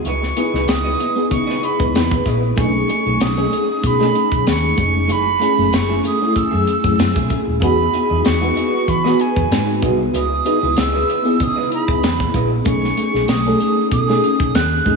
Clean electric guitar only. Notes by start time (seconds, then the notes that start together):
0.06 E4 B4 D#5
0.22 muted clean electric guitar stroke
0.37 E4 B4 D#5
0.54 E4 B4 D#5
0.68 muted clean electric guitar stroke
0.84 E4 B4 D#5
1.00 E4 B4 D#5
1.17 muted clean electric guitar stroke
1.31 muted clean electric guitar stroke
1.47 E4 B4 D#5
1.63 muted clean electric guitar stroke
1.80 muted clean electric guitar stroke
2.12 muted clean electric guitar stroke
2.26 E4 B4 D#5
2.42 muted clean electric guitar stroke
2.56 A3 D#4 G#4
2.75 muted clean electric guitar stroke
2.88 A3 D#4 G#4
3.05 A3 D#4 G#4
3.20 muted clean electric guitar stroke
3.37 A3 D#4 G#4
3.51 A3 D#4 G#4
3.68 muted clean electric guitar stroke
3.82 muted clean electric guitar stroke
3.99 A3 D#4 G#4
4.15 muted clean electric guitar stroke
4.31 muted clean electric guitar stroke
4.63 muted clean electric guitar stroke
4.76 A3 D#4 G#4
4.94 muted clean electric guitar stroke
5.08 A3 E4 G#4
5.26 muted clean electric guitar stroke
5.39 A3 E4 G#4
5.57 A3 E4 G#4
5.71 muted clean electric guitar stroke
5.89 A3 E4 G#4
6.03 A3 E4 G#4
6.19 muted clean electric guitar stroke
6.34 muted clean electric guitar stroke
6.51 A3 E4 G#4
6.66 muted clean electric guitar stroke
6.83 muted clean electric guitar stroke
6.98 muted clean electric guitar stroke
7.14 A3 E4 G#4
7.29 A3 E4 G#4
7.46 muted clean electric guitar stroke
7.60 E4 G#4 D#5
7.78 muted clean electric guitar stroke
7.93 E4 G#4 D#5
8.10 E4 G#4 D#5
8.25 muted clean electric guitar stroke
8.41 E4 G#4 D#5
8.55 E4 G#4 D#5
8.73 muted clean electric guitar stroke
8.87 muted clean electric guitar stroke
9.04 E4 G#4 D#5
9.19 muted clean electric guitar stroke
9.36 muted clean electric guitar stroke
9.67 muted clean electric guitar stroke
9.82 E4 G#4 D#5
10.00 muted clean electric guitar stroke
10.14 E4 B4 D#5
10.31 muted clean electric guitar stroke
10.45 E4 B4 D#5
10.62 E4 B4 D#5
10.76 muted clean electric guitar stroke
10.93 E4 B4 D#5
11.08 E4 B4 D#5
11.24 muted clean electric guitar stroke
11.40 muted clean electric guitar stroke
11.56 E4 B4 D#5
11.72 muted clean electric guitar stroke
11.89 muted clean electric guitar stroke
12.20 muted clean electric guitar stroke
12.34 E4 B4 D#5
12.51 muted clean electric guitar stroke
12.65 A3 D#4 G#4
12.83 muted clean electric guitar stroke
12.97 A3 D#4 G#4
13.14 A3 D#4 G#4
13.46 A3 D#4 G#4
13.60 A3 D#4 G#4
13.77 muted clean electric guitar stroke
13.92 muted clean electric guitar stroke
14.08 A3 D#4 G#4
14.23 muted clean electric guitar stroke
14.40 muted clean electric guitar stroke
14.71 muted clean electric guitar stroke
14.85 A3 D#4 G#4